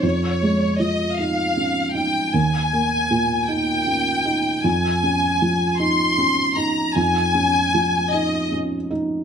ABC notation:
X:1
M:6/8
L:1/8
Q:3/8=52
K:Dblyd
V:1 name="Violin section"
d2 e f2 g | a3 g3 | a3 c'2 b | a3 e z2 |]
V:2 name="Felt piano"
F,, A, F, E D E | E,, B, B,, E D E | F,, D F, E D E | F,, D F, E D E |]